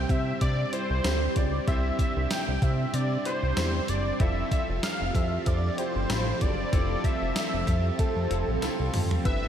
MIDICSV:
0, 0, Header, 1, 7, 480
1, 0, Start_track
1, 0, Tempo, 631579
1, 1272, Time_signature, 4, 2, 24, 8
1, 7205, End_track
2, 0, Start_track
2, 0, Title_t, "Analog synth lead"
2, 0, Program_c, 0, 81
2, 0, Note_on_c, 0, 79, 111
2, 76, Note_on_c, 0, 76, 98
2, 87, Note_off_c, 0, 79, 0
2, 311, Note_off_c, 0, 76, 0
2, 315, Note_on_c, 0, 74, 107
2, 537, Note_off_c, 0, 74, 0
2, 558, Note_on_c, 0, 72, 105
2, 1038, Note_on_c, 0, 74, 95
2, 1049, Note_off_c, 0, 72, 0
2, 1274, Note_off_c, 0, 74, 0
2, 1278, Note_on_c, 0, 76, 102
2, 1499, Note_off_c, 0, 76, 0
2, 1519, Note_on_c, 0, 76, 105
2, 1739, Note_off_c, 0, 76, 0
2, 1757, Note_on_c, 0, 79, 109
2, 1998, Note_on_c, 0, 76, 95
2, 2010, Note_off_c, 0, 79, 0
2, 2234, Note_on_c, 0, 74, 103
2, 2246, Note_off_c, 0, 76, 0
2, 2473, Note_off_c, 0, 74, 0
2, 2477, Note_on_c, 0, 72, 107
2, 2957, Note_on_c, 0, 74, 98
2, 2968, Note_off_c, 0, 72, 0
2, 3196, Note_on_c, 0, 76, 106
2, 3208, Note_off_c, 0, 74, 0
2, 3429, Note_off_c, 0, 76, 0
2, 3434, Note_on_c, 0, 76, 98
2, 3540, Note_off_c, 0, 76, 0
2, 3674, Note_on_c, 0, 77, 104
2, 3916, Note_on_c, 0, 76, 93
2, 3927, Note_off_c, 0, 77, 0
2, 4158, Note_on_c, 0, 74, 94
2, 4170, Note_off_c, 0, 76, 0
2, 4396, Note_on_c, 0, 72, 105
2, 4407, Note_off_c, 0, 74, 0
2, 4874, Note_on_c, 0, 74, 99
2, 4885, Note_off_c, 0, 72, 0
2, 5355, Note_on_c, 0, 76, 98
2, 5366, Note_off_c, 0, 74, 0
2, 6073, Note_off_c, 0, 76, 0
2, 6078, Note_on_c, 0, 69, 86
2, 6765, Note_off_c, 0, 69, 0
2, 7033, Note_on_c, 0, 76, 121
2, 7205, Note_off_c, 0, 76, 0
2, 7205, End_track
3, 0, Start_track
3, 0, Title_t, "Grand piano"
3, 0, Program_c, 1, 0
3, 0, Control_c, 1, 64, 127
3, 0, Note_on_c, 1, 60, 75
3, 0, Note_on_c, 1, 64, 71
3, 0, Note_on_c, 1, 67, 69
3, 0, Note_on_c, 1, 72, 84
3, 551, Note_off_c, 1, 60, 0
3, 551, Note_on_c, 1, 60, 71
3, 554, Note_off_c, 1, 64, 0
3, 554, Note_on_c, 1, 64, 62
3, 557, Note_off_c, 1, 67, 0
3, 557, Note_on_c, 1, 67, 65
3, 560, Note_off_c, 1, 72, 0
3, 560, Note_on_c, 1, 72, 71
3, 731, Note_off_c, 1, 60, 0
3, 732, Note_off_c, 1, 64, 0
3, 733, Note_off_c, 1, 67, 0
3, 735, Note_off_c, 1, 72, 0
3, 789, Note_on_c, 1, 60, 70
3, 794, Note_on_c, 1, 64, 66
3, 796, Note_on_c, 1, 67, 69
3, 798, Note_on_c, 1, 72, 82
3, 1145, Note_off_c, 1, 60, 0
3, 1147, Note_off_c, 1, 64, 0
3, 1148, Note_off_c, 1, 67, 0
3, 1149, Note_off_c, 1, 72, 0
3, 1270, Note_on_c, 1, 60, 76
3, 1273, Note_on_c, 1, 64, 66
3, 1276, Note_on_c, 1, 67, 68
3, 1279, Note_on_c, 1, 72, 84
3, 1962, Note_off_c, 1, 60, 0
3, 1964, Note_off_c, 1, 64, 0
3, 1965, Note_off_c, 1, 67, 0
3, 1967, Note_off_c, 1, 72, 0
3, 2470, Note_on_c, 1, 60, 67
3, 2473, Note_on_c, 1, 64, 64
3, 2476, Note_on_c, 1, 67, 63
3, 2478, Note_on_c, 1, 72, 74
3, 2650, Note_off_c, 1, 60, 0
3, 2651, Note_off_c, 1, 64, 0
3, 2653, Note_off_c, 1, 67, 0
3, 2654, Note_off_c, 1, 72, 0
3, 2708, Note_on_c, 1, 60, 75
3, 2712, Note_on_c, 1, 64, 67
3, 2715, Note_on_c, 1, 67, 70
3, 2718, Note_on_c, 1, 72, 86
3, 3065, Note_off_c, 1, 60, 0
3, 3066, Note_off_c, 1, 64, 0
3, 3068, Note_off_c, 1, 67, 0
3, 3069, Note_off_c, 1, 72, 0
3, 3188, Note_on_c, 1, 60, 76
3, 3192, Note_on_c, 1, 64, 70
3, 3194, Note_on_c, 1, 65, 69
3, 3198, Note_on_c, 1, 69, 84
3, 3201, Control_c, 1, 64, 0
3, 3354, Control_c, 1, 64, 127
3, 3881, Note_off_c, 1, 60, 0
3, 3883, Note_off_c, 1, 64, 0
3, 3884, Note_off_c, 1, 65, 0
3, 3886, Note_off_c, 1, 69, 0
3, 4391, Note_on_c, 1, 60, 66
3, 4393, Note_on_c, 1, 64, 60
3, 4397, Note_on_c, 1, 65, 60
3, 4399, Note_on_c, 1, 67, 74
3, 4570, Note_off_c, 1, 60, 0
3, 4572, Note_off_c, 1, 64, 0
3, 4574, Note_off_c, 1, 65, 0
3, 4574, Note_off_c, 1, 67, 0
3, 4630, Note_on_c, 1, 60, 72
3, 4634, Note_on_c, 1, 64, 67
3, 4637, Note_on_c, 1, 65, 69
3, 4640, Note_on_c, 1, 83, 82
3, 4986, Note_off_c, 1, 60, 0
3, 4987, Note_off_c, 1, 64, 0
3, 4989, Note_off_c, 1, 65, 0
3, 4990, Note_off_c, 1, 83, 0
3, 5110, Note_on_c, 1, 60, 74
3, 5113, Note_on_c, 1, 64, 69
3, 5115, Note_on_c, 1, 65, 71
3, 5118, Note_on_c, 1, 69, 82
3, 5802, Note_off_c, 1, 60, 0
3, 5803, Note_off_c, 1, 64, 0
3, 5804, Note_off_c, 1, 65, 0
3, 5806, Note_off_c, 1, 69, 0
3, 6306, Note_on_c, 1, 60, 68
3, 6310, Note_on_c, 1, 64, 58
3, 6312, Note_on_c, 1, 65, 61
3, 6316, Note_on_c, 1, 69, 73
3, 6488, Note_off_c, 1, 60, 0
3, 6490, Note_off_c, 1, 64, 0
3, 6491, Note_off_c, 1, 65, 0
3, 6493, Note_off_c, 1, 69, 0
3, 6548, Note_on_c, 1, 60, 74
3, 6550, Note_on_c, 1, 64, 68
3, 6554, Note_on_c, 1, 65, 70
3, 6557, Note_on_c, 1, 69, 78
3, 6904, Note_off_c, 1, 60, 0
3, 6905, Note_off_c, 1, 64, 0
3, 6907, Note_off_c, 1, 65, 0
3, 6909, Note_off_c, 1, 69, 0
3, 7028, Note_on_c, 1, 59, 78
3, 7031, Note_on_c, 1, 62, 66
3, 7034, Note_on_c, 1, 67, 67
3, 7037, Note_on_c, 1, 71, 82
3, 7044, Control_c, 1, 64, 0
3, 7165, Control_c, 1, 64, 127
3, 7205, Note_off_c, 1, 59, 0
3, 7205, Note_off_c, 1, 62, 0
3, 7205, Note_off_c, 1, 67, 0
3, 7205, Note_off_c, 1, 71, 0
3, 7205, End_track
4, 0, Start_track
4, 0, Title_t, "Overdriven electric guitar"
4, 0, Program_c, 2, 29
4, 0, Note_on_c, 2, 48, 72
4, 0, Note_on_c, 2, 55, 82
4, 0, Note_on_c, 2, 60, 86
4, 297, Note_off_c, 2, 48, 0
4, 306, Note_on_c, 2, 48, 64
4, 311, Note_off_c, 2, 55, 0
4, 320, Note_on_c, 2, 55, 69
4, 329, Note_off_c, 2, 60, 0
4, 332, Note_on_c, 2, 60, 66
4, 776, Note_off_c, 2, 48, 0
4, 786, Note_on_c, 2, 48, 66
4, 791, Note_off_c, 2, 55, 0
4, 800, Note_on_c, 2, 55, 74
4, 809, Note_off_c, 2, 60, 0
4, 812, Note_on_c, 2, 60, 72
4, 1254, Note_off_c, 2, 48, 0
4, 1263, Note_on_c, 2, 48, 77
4, 1276, Note_off_c, 2, 55, 0
4, 1285, Note_on_c, 2, 55, 77
4, 1299, Note_off_c, 2, 60, 0
4, 1302, Note_on_c, 2, 60, 82
4, 2217, Note_off_c, 2, 48, 0
4, 2226, Note_on_c, 2, 48, 62
4, 2230, Note_off_c, 2, 55, 0
4, 2239, Note_on_c, 2, 55, 71
4, 2248, Note_off_c, 2, 60, 0
4, 2251, Note_on_c, 2, 60, 72
4, 2696, Note_off_c, 2, 48, 0
4, 2705, Note_on_c, 2, 48, 61
4, 2710, Note_off_c, 2, 55, 0
4, 2719, Note_on_c, 2, 55, 68
4, 2728, Note_off_c, 2, 60, 0
4, 2731, Note_on_c, 2, 60, 76
4, 3179, Note_off_c, 2, 55, 0
4, 3182, Note_on_c, 2, 53, 85
4, 3189, Note_off_c, 2, 48, 0
4, 3201, Note_off_c, 2, 60, 0
4, 3204, Note_on_c, 2, 60, 78
4, 3221, Note_on_c, 2, 65, 85
4, 4137, Note_off_c, 2, 53, 0
4, 4146, Note_on_c, 2, 53, 59
4, 4152, Note_off_c, 2, 60, 0
4, 4161, Note_on_c, 2, 60, 61
4, 4163, Note_off_c, 2, 65, 0
4, 4172, Note_on_c, 2, 65, 76
4, 4616, Note_off_c, 2, 53, 0
4, 4625, Note_on_c, 2, 53, 68
4, 4630, Note_off_c, 2, 60, 0
4, 4639, Note_on_c, 2, 60, 65
4, 4642, Note_off_c, 2, 65, 0
4, 4651, Note_on_c, 2, 65, 67
4, 5099, Note_off_c, 2, 53, 0
4, 5108, Note_on_c, 2, 53, 80
4, 5109, Note_off_c, 2, 60, 0
4, 5117, Note_off_c, 2, 65, 0
4, 5118, Note_on_c, 2, 60, 83
4, 5126, Note_on_c, 2, 65, 81
4, 5816, Note_off_c, 2, 65, 0
4, 5826, Note_on_c, 2, 65, 48
4, 5830, Note_off_c, 2, 53, 0
4, 5835, Note_off_c, 2, 60, 0
4, 5852, Note_on_c, 2, 60, 43
4, 6065, Note_on_c, 2, 53, 61
4, 6069, Note_off_c, 2, 65, 0
4, 6071, Note_off_c, 2, 60, 0
4, 6080, Note_on_c, 2, 60, 60
4, 6092, Note_on_c, 2, 65, 67
4, 6536, Note_off_c, 2, 53, 0
4, 6545, Note_on_c, 2, 53, 63
4, 6551, Note_off_c, 2, 60, 0
4, 6560, Note_on_c, 2, 60, 65
4, 6562, Note_off_c, 2, 65, 0
4, 6571, Note_on_c, 2, 65, 70
4, 7020, Note_off_c, 2, 53, 0
4, 7023, Note_on_c, 2, 55, 71
4, 7036, Note_off_c, 2, 60, 0
4, 7042, Note_off_c, 2, 65, 0
4, 7045, Note_on_c, 2, 62, 83
4, 7063, Note_on_c, 2, 67, 86
4, 7205, Note_off_c, 2, 55, 0
4, 7205, Note_off_c, 2, 62, 0
4, 7205, Note_off_c, 2, 67, 0
4, 7205, End_track
5, 0, Start_track
5, 0, Title_t, "String machine"
5, 0, Program_c, 3, 50
5, 0, Note_on_c, 3, 55, 82
5, 0, Note_on_c, 3, 60, 73
5, 1253, Note_off_c, 3, 60, 0
5, 1275, Note_on_c, 3, 62, 77
5, 3162, Note_off_c, 3, 55, 0
5, 3174, Note_off_c, 3, 62, 0
5, 3194, Note_on_c, 3, 53, 78
5, 3195, Note_on_c, 3, 60, 72
5, 3195, Note_on_c, 3, 67, 74
5, 3196, Note_on_c, 3, 69, 89
5, 7003, Note_off_c, 3, 53, 0
5, 7003, Note_off_c, 3, 60, 0
5, 7003, Note_off_c, 3, 67, 0
5, 7004, Note_off_c, 3, 69, 0
5, 7031, Note_on_c, 3, 59, 70
5, 7032, Note_on_c, 3, 55, 82
5, 7033, Note_on_c, 3, 62, 86
5, 7205, Note_off_c, 3, 55, 0
5, 7205, Note_off_c, 3, 59, 0
5, 7205, Note_off_c, 3, 62, 0
5, 7205, End_track
6, 0, Start_track
6, 0, Title_t, "Analog synth bass"
6, 0, Program_c, 4, 38
6, 72, Note_on_c, 4, 48, 106
6, 252, Note_off_c, 4, 48, 0
6, 314, Note_on_c, 4, 48, 108
6, 494, Note_off_c, 4, 48, 0
6, 685, Note_on_c, 4, 36, 87
6, 766, Note_off_c, 4, 36, 0
6, 793, Note_on_c, 4, 38, 94
6, 973, Note_off_c, 4, 38, 0
6, 1036, Note_on_c, 4, 37, 96
6, 1215, Note_off_c, 4, 37, 0
6, 1274, Note_on_c, 4, 36, 93
6, 1453, Note_off_c, 4, 36, 0
6, 1646, Note_on_c, 4, 36, 100
6, 1726, Note_off_c, 4, 36, 0
6, 1886, Note_on_c, 4, 36, 88
6, 1966, Note_off_c, 4, 36, 0
6, 1992, Note_on_c, 4, 48, 104
6, 2172, Note_off_c, 4, 48, 0
6, 2233, Note_on_c, 4, 48, 94
6, 2413, Note_off_c, 4, 48, 0
6, 2606, Note_on_c, 4, 36, 90
6, 2686, Note_off_c, 4, 36, 0
6, 2714, Note_on_c, 4, 40, 93
6, 2893, Note_off_c, 4, 40, 0
6, 2955, Note_on_c, 4, 30, 94
6, 3134, Note_off_c, 4, 30, 0
6, 3193, Note_on_c, 4, 29, 100
6, 3373, Note_off_c, 4, 29, 0
6, 3566, Note_on_c, 4, 29, 108
6, 3647, Note_off_c, 4, 29, 0
6, 3805, Note_on_c, 4, 29, 93
6, 3886, Note_off_c, 4, 29, 0
6, 3912, Note_on_c, 4, 41, 98
6, 4092, Note_off_c, 4, 41, 0
6, 4153, Note_on_c, 4, 41, 103
6, 4333, Note_off_c, 4, 41, 0
6, 4525, Note_on_c, 4, 31, 87
6, 4606, Note_off_c, 4, 31, 0
6, 4633, Note_on_c, 4, 33, 95
6, 4813, Note_off_c, 4, 33, 0
6, 4877, Note_on_c, 4, 30, 97
6, 5055, Note_off_c, 4, 30, 0
6, 5114, Note_on_c, 4, 29, 97
6, 5293, Note_off_c, 4, 29, 0
6, 5486, Note_on_c, 4, 29, 87
6, 5566, Note_off_c, 4, 29, 0
6, 5726, Note_on_c, 4, 29, 96
6, 5806, Note_off_c, 4, 29, 0
6, 5832, Note_on_c, 4, 41, 104
6, 6012, Note_off_c, 4, 41, 0
6, 6205, Note_on_c, 4, 41, 95
6, 6286, Note_off_c, 4, 41, 0
6, 6313, Note_on_c, 4, 29, 89
6, 6412, Note_off_c, 4, 29, 0
6, 6445, Note_on_c, 4, 33, 87
6, 6526, Note_off_c, 4, 33, 0
6, 6554, Note_on_c, 4, 36, 49
6, 6606, Note_off_c, 4, 36, 0
6, 6685, Note_on_c, 4, 36, 91
6, 6766, Note_off_c, 4, 36, 0
6, 6793, Note_on_c, 4, 41, 99
6, 6973, Note_off_c, 4, 41, 0
6, 7033, Note_on_c, 4, 31, 102
6, 7205, Note_off_c, 4, 31, 0
6, 7205, End_track
7, 0, Start_track
7, 0, Title_t, "Drums"
7, 72, Note_on_c, 9, 36, 102
7, 76, Note_on_c, 9, 42, 66
7, 148, Note_off_c, 9, 36, 0
7, 152, Note_off_c, 9, 42, 0
7, 313, Note_on_c, 9, 42, 80
7, 314, Note_on_c, 9, 36, 90
7, 389, Note_off_c, 9, 42, 0
7, 390, Note_off_c, 9, 36, 0
7, 554, Note_on_c, 9, 42, 82
7, 630, Note_off_c, 9, 42, 0
7, 793, Note_on_c, 9, 54, 81
7, 794, Note_off_c, 9, 54, 0
7, 794, Note_on_c, 9, 38, 109
7, 794, Note_on_c, 9, 42, 72
7, 794, Note_on_c, 9, 54, 67
7, 870, Note_off_c, 9, 38, 0
7, 870, Note_off_c, 9, 42, 0
7, 870, Note_off_c, 9, 54, 0
7, 1033, Note_on_c, 9, 42, 82
7, 1036, Note_on_c, 9, 36, 88
7, 1109, Note_off_c, 9, 42, 0
7, 1112, Note_off_c, 9, 36, 0
7, 1274, Note_on_c, 9, 36, 115
7, 1274, Note_on_c, 9, 42, 74
7, 1350, Note_off_c, 9, 36, 0
7, 1350, Note_off_c, 9, 42, 0
7, 1512, Note_on_c, 9, 36, 90
7, 1515, Note_on_c, 9, 42, 73
7, 1588, Note_off_c, 9, 36, 0
7, 1591, Note_off_c, 9, 42, 0
7, 1751, Note_on_c, 9, 54, 88
7, 1753, Note_on_c, 9, 38, 112
7, 1754, Note_off_c, 9, 54, 0
7, 1754, Note_on_c, 9, 54, 60
7, 1755, Note_on_c, 9, 42, 82
7, 1829, Note_off_c, 9, 38, 0
7, 1830, Note_off_c, 9, 54, 0
7, 1831, Note_off_c, 9, 42, 0
7, 1992, Note_on_c, 9, 36, 101
7, 1996, Note_on_c, 9, 42, 64
7, 2068, Note_off_c, 9, 36, 0
7, 2072, Note_off_c, 9, 42, 0
7, 2232, Note_on_c, 9, 42, 83
7, 2308, Note_off_c, 9, 42, 0
7, 2473, Note_on_c, 9, 42, 79
7, 2549, Note_off_c, 9, 42, 0
7, 2712, Note_on_c, 9, 42, 71
7, 2712, Note_on_c, 9, 54, 72
7, 2713, Note_on_c, 9, 38, 112
7, 2714, Note_off_c, 9, 54, 0
7, 2714, Note_on_c, 9, 54, 82
7, 2788, Note_off_c, 9, 42, 0
7, 2789, Note_off_c, 9, 38, 0
7, 2790, Note_off_c, 9, 54, 0
7, 2952, Note_on_c, 9, 42, 76
7, 3028, Note_off_c, 9, 42, 0
7, 3192, Note_on_c, 9, 42, 74
7, 3193, Note_on_c, 9, 36, 123
7, 3268, Note_off_c, 9, 42, 0
7, 3269, Note_off_c, 9, 36, 0
7, 3431, Note_on_c, 9, 36, 89
7, 3433, Note_on_c, 9, 42, 70
7, 3507, Note_off_c, 9, 36, 0
7, 3509, Note_off_c, 9, 42, 0
7, 3672, Note_on_c, 9, 38, 122
7, 3672, Note_on_c, 9, 54, 61
7, 3673, Note_on_c, 9, 42, 82
7, 3748, Note_off_c, 9, 38, 0
7, 3748, Note_off_c, 9, 54, 0
7, 3749, Note_off_c, 9, 42, 0
7, 3912, Note_on_c, 9, 36, 98
7, 3915, Note_on_c, 9, 42, 66
7, 3988, Note_off_c, 9, 36, 0
7, 3991, Note_off_c, 9, 42, 0
7, 4152, Note_on_c, 9, 42, 87
7, 4154, Note_on_c, 9, 36, 91
7, 4228, Note_off_c, 9, 42, 0
7, 4230, Note_off_c, 9, 36, 0
7, 4394, Note_on_c, 9, 42, 80
7, 4470, Note_off_c, 9, 42, 0
7, 4634, Note_on_c, 9, 42, 74
7, 4634, Note_on_c, 9, 54, 67
7, 4635, Note_on_c, 9, 38, 110
7, 4710, Note_off_c, 9, 42, 0
7, 4710, Note_off_c, 9, 54, 0
7, 4711, Note_off_c, 9, 38, 0
7, 4873, Note_on_c, 9, 42, 77
7, 4876, Note_on_c, 9, 36, 89
7, 4949, Note_off_c, 9, 42, 0
7, 4952, Note_off_c, 9, 36, 0
7, 5114, Note_on_c, 9, 36, 118
7, 5114, Note_on_c, 9, 42, 75
7, 5190, Note_off_c, 9, 36, 0
7, 5190, Note_off_c, 9, 42, 0
7, 5352, Note_on_c, 9, 36, 87
7, 5356, Note_on_c, 9, 42, 76
7, 5428, Note_off_c, 9, 36, 0
7, 5432, Note_off_c, 9, 42, 0
7, 5591, Note_on_c, 9, 54, 86
7, 5593, Note_on_c, 9, 38, 122
7, 5594, Note_off_c, 9, 54, 0
7, 5594, Note_on_c, 9, 54, 61
7, 5595, Note_on_c, 9, 42, 85
7, 5669, Note_off_c, 9, 38, 0
7, 5670, Note_off_c, 9, 54, 0
7, 5671, Note_off_c, 9, 42, 0
7, 5832, Note_on_c, 9, 36, 97
7, 5836, Note_on_c, 9, 42, 67
7, 5908, Note_off_c, 9, 36, 0
7, 5912, Note_off_c, 9, 42, 0
7, 6073, Note_on_c, 9, 42, 83
7, 6074, Note_on_c, 9, 36, 93
7, 6149, Note_off_c, 9, 42, 0
7, 6150, Note_off_c, 9, 36, 0
7, 6314, Note_on_c, 9, 42, 77
7, 6390, Note_off_c, 9, 42, 0
7, 6553, Note_on_c, 9, 38, 58
7, 6553, Note_on_c, 9, 42, 72
7, 6554, Note_on_c, 9, 54, 81
7, 6629, Note_off_c, 9, 38, 0
7, 6629, Note_off_c, 9, 42, 0
7, 6630, Note_off_c, 9, 54, 0
7, 6792, Note_on_c, 9, 46, 81
7, 6793, Note_on_c, 9, 45, 93
7, 6868, Note_off_c, 9, 46, 0
7, 6869, Note_off_c, 9, 45, 0
7, 6925, Note_on_c, 9, 43, 93
7, 7001, Note_off_c, 9, 43, 0
7, 7033, Note_on_c, 9, 36, 115
7, 7033, Note_on_c, 9, 42, 77
7, 7109, Note_off_c, 9, 36, 0
7, 7109, Note_off_c, 9, 42, 0
7, 7205, End_track
0, 0, End_of_file